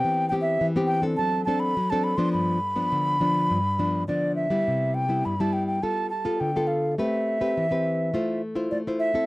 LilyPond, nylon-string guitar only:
\new Staff \with { instrumentName = "Nylon-string guitar" } { \time 4/4 \key c \major \tempo 4 = 104 << { <b c' g'>8 <b c' g'>8. <b c' g'>8 <c' d' a'>8. <c' d' a'>8 r16 <c' d' a'>8 <f b d'>16~ | <f b d'>8 r16 <f b d'>8. <f b d'>8. r16 <f b d'>8 <f b d'>8. <g b e'>16~ | <g b e'>8. <g b e'>8 <g b e'>8. <b f' a'>8 r16 <b f' a'>8 <b f' a'>8. | <c' g' b'>8. <c' g' b'>8 <c' g' b'>8. <e' f' c''>8 r16 <e' f' c''>8 <e' f' c''>8 <c' e' a'>16 | } \\ { e4 e4 fis4 fis4 | g,4 d4 g,4 d4 | c4 g,4 g4 d4 | a4 e4 a4 a4 | } >> }